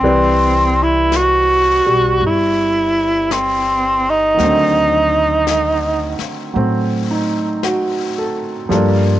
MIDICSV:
0, 0, Header, 1, 6, 480
1, 0, Start_track
1, 0, Tempo, 1094891
1, 7, Time_signature, 4, 2, 24, 8
1, 1927, Tempo, 1079137
1, 4062, End_track
2, 0, Start_track
2, 0, Title_t, "Tenor saxophone"
2, 0, Program_c, 0, 66
2, 0, Note_on_c, 0, 60, 75
2, 362, Note_on_c, 0, 64, 77
2, 369, Note_off_c, 0, 60, 0
2, 511, Note_on_c, 0, 66, 91
2, 517, Note_off_c, 0, 64, 0
2, 981, Note_off_c, 0, 66, 0
2, 991, Note_on_c, 0, 64, 76
2, 1456, Note_on_c, 0, 60, 67
2, 1462, Note_off_c, 0, 64, 0
2, 1797, Note_on_c, 0, 63, 82
2, 1804, Note_off_c, 0, 60, 0
2, 2745, Note_off_c, 0, 63, 0
2, 4062, End_track
3, 0, Start_track
3, 0, Title_t, "Grand piano"
3, 0, Program_c, 1, 0
3, 0, Control_c, 1, 64, 127
3, 13, Control_c, 1, 64, 0
3, 15, Note_on_c, 1, 52, 44
3, 16, Note_on_c, 1, 55, 42
3, 18, Note_on_c, 1, 71, 41
3, 19, Note_on_c, 1, 60, 37
3, 19, Note_on_c, 1, 74, 46
3, 90, Control_c, 1, 64, 127
3, 810, Note_off_c, 1, 55, 0
3, 816, Note_on_c, 1, 55, 38
3, 1904, Note_on_c, 1, 51, 45
3, 1916, Note_on_c, 1, 54, 41
3, 1925, Note_off_c, 1, 55, 0
3, 1928, Note_on_c, 1, 57, 40
3, 1930, Note_off_c, 1, 52, 0
3, 1931, Note_off_c, 1, 60, 0
3, 1931, Note_off_c, 1, 71, 0
3, 1931, Control_c, 1, 64, 0
3, 1932, Note_off_c, 1, 74, 0
3, 1940, Note_on_c, 1, 60, 43
3, 1951, Note_on_c, 1, 50, 50
3, 2005, Control_c, 1, 64, 127
3, 2872, Note_off_c, 1, 54, 0
3, 2879, Note_off_c, 1, 57, 0
3, 2879, Note_on_c, 1, 54, 37
3, 2885, Note_on_c, 1, 57, 33
3, 2887, Note_off_c, 1, 60, 0
3, 2894, Note_on_c, 1, 60, 44
3, 3134, Note_on_c, 1, 63, 33
3, 3370, Note_on_c, 1, 66, 43
3, 3473, Note_off_c, 1, 63, 0
3, 3611, Note_on_c, 1, 69, 37
3, 3753, Note_off_c, 1, 66, 0
3, 3836, Note_off_c, 1, 51, 0
3, 3837, Note_on_c, 1, 53, 47
3, 3840, Note_off_c, 1, 69, 0
3, 3842, Note_off_c, 1, 54, 0
3, 3842, Note_on_c, 1, 55, 39
3, 3846, Note_off_c, 1, 57, 0
3, 3847, Note_on_c, 1, 69, 41
3, 3850, Note_off_c, 1, 60, 0
3, 3852, Control_c, 1, 64, 0
3, 3852, Note_on_c, 1, 58, 42
3, 3857, Note_on_c, 1, 62, 52
3, 3859, Note_off_c, 1, 50, 0
3, 3942, Control_c, 1, 64, 127
3, 4062, Note_off_c, 1, 53, 0
3, 4062, Note_off_c, 1, 55, 0
3, 4062, Note_off_c, 1, 58, 0
3, 4062, Note_off_c, 1, 62, 0
3, 4062, Note_off_c, 1, 69, 0
3, 4062, End_track
4, 0, Start_track
4, 0, Title_t, "Upright bass"
4, 0, Program_c, 2, 32
4, 4, Note_on_c, 2, 36, 65
4, 797, Note_off_c, 2, 36, 0
4, 819, Note_on_c, 2, 35, 54
4, 960, Note_off_c, 2, 35, 0
4, 967, Note_on_c, 2, 31, 73
4, 1906, Note_off_c, 2, 31, 0
4, 1922, Note_on_c, 2, 38, 70
4, 2714, Note_off_c, 2, 38, 0
4, 2888, Note_on_c, 2, 45, 71
4, 3829, Note_off_c, 2, 45, 0
4, 3842, Note_on_c, 2, 43, 69
4, 4062, Note_off_c, 2, 43, 0
4, 4062, End_track
5, 0, Start_track
5, 0, Title_t, "Muted upright bass strokes"
5, 2729, Note_on_c, 9, 29, 35
5, 2774, Note_off_c, 9, 29, 0
5, 4062, End_track
6, 0, Start_track
6, 0, Title_t, "Drums"
6, 7, Note_on_c, 9, 25, 36
6, 491, Note_off_c, 9, 25, 0
6, 491, Note_on_c, 9, 25, 35
6, 491, Note_on_c, 9, 38, 36
6, 491, Note_on_c, 9, 44, 43
6, 534, Note_off_c, 9, 38, 0
6, 534, Note_off_c, 9, 44, 0
6, 971, Note_off_c, 9, 25, 0
6, 971, Note_on_c, 9, 25, 29
6, 1451, Note_off_c, 9, 25, 0
6, 1451, Note_on_c, 9, 25, 30
6, 1451, Note_on_c, 9, 38, 37
6, 1451, Note_on_c, 9, 44, 49
6, 1494, Note_off_c, 9, 38, 0
6, 1494, Note_off_c, 9, 44, 0
6, 1923, Note_off_c, 9, 25, 0
6, 1923, Note_on_c, 9, 25, 28
6, 1923, Note_on_c, 9, 38, 26
6, 1967, Note_off_c, 9, 38, 0
6, 2404, Note_off_c, 9, 25, 0
6, 2404, Note_on_c, 9, 25, 34
6, 2404, Note_on_c, 9, 38, 40
6, 2404, Note_on_c, 9, 44, 45
6, 2449, Note_off_c, 9, 38, 0
6, 2449, Note_off_c, 9, 44, 0
6, 2724, Note_on_c, 9, 38, 24
6, 2769, Note_off_c, 9, 38, 0
6, 2886, Note_off_c, 9, 25, 0
6, 2886, Note_on_c, 9, 25, 33
6, 3366, Note_off_c, 9, 25, 0
6, 3366, Note_on_c, 9, 25, 34
6, 3366, Note_on_c, 9, 38, 38
6, 3366, Note_on_c, 9, 44, 45
6, 3411, Note_off_c, 9, 38, 0
6, 3411, Note_off_c, 9, 44, 0
6, 3848, Note_off_c, 9, 25, 0
6, 3848, Note_on_c, 9, 25, 28
6, 3848, Note_on_c, 9, 38, 26
6, 3892, Note_off_c, 9, 38, 0
6, 4062, Note_off_c, 9, 25, 0
6, 4062, End_track
0, 0, End_of_file